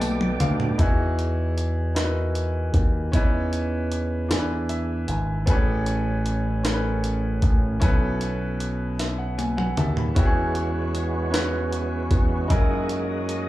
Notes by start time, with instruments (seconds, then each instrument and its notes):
Already playing: slap bass B1, grand piano B2 B3 D#4 G4 A4, tonewheel organ A3 B3 G4 D5
0.01 grand piano A5, closed hi-hat, high tom, tambourine
0.21 mid tom
0.40 slap bass D2, grand piano F5, closed hi-hat, mid tom
0.60 floor tom
0.78 slap bass E2, grand piano E3 D#4 E4 F#4 G#4, kick, closed hi-hat
1.19 closed hi-hat
1.58 closed hi-hat
1.95 grand piano D#4 E4 F#4 A#4, snare, closed hi-hat
2.04 grand piano B4
2.35 closed hi-hat
2.74 slap bass D#2, kick, closed hi-hat
3.12 slap bass E2, grand piano E3 C#4 D#4 E4 B4, kick, closed hi-hat
3.53 closed hi-hat
3.92 closed hi-hat
4.28 slap bass E2, grand piano E3 D4 E4 G#4 A4, snare, closed hi-hat
4.39 grand piano B4
4.69 grand piano E5, closed hi-hat
5.08 slap bass G#1, grand piano G#5, closed hi-hat
5.46 slap bass A1, grand piano A2 B3 G#4 A4 B4, kick, closed hi-hat
5.52 grand piano C#4
5.86 closed hi-hat
6.26 closed hi-hat
6.63 grand piano C#4 G#4 A4 A#4, snare, closed hi-hat
6.73 grand piano B4
7.04 closed hi-hat
7.42 slap bass A1, kick, closed hi-hat
7.80 slap bass B1, grand piano B2 C#4 E4 A4 B4, kick, closed hi-hat
8.21 closed hi-hat
8.60 closed hi-hat
8.99 grand piano E5, snare, closed hi-hat
9.18 grand piano F#5
9.38 grand piano G#5, closed hi-hat, high tom
9.57 grand piano F#5 G#5, mid tom
9.77 slap bass D#2, grand piano E5 A5, closed hi-hat, mid tom
9.97 grand piano B5, floor tom
10.14 slap bass E2, tonewheel organ E3 G#3 B3 C#4 F#4, grand piano E3 C#4 E4 F#4, kick, closed hi-hat
10.19 grand piano G4
10.25 grand piano G#4
10.55 closed hi-hat
10.95 closed hi-hat
11.31 grand piano C#4 E4 F#4 B4, snare, closed hi-hat
11.73 closed hi-hat
12.11 slap bass E2, kick, closed hi-hat
12.48 slap bass F#2, tonewheel organ F#3 A#3 D#5, grand piano D#4 E4 G#4 A#4, kick, closed hi-hat
12.89 closed hi-hat
13.29 closed hi-hat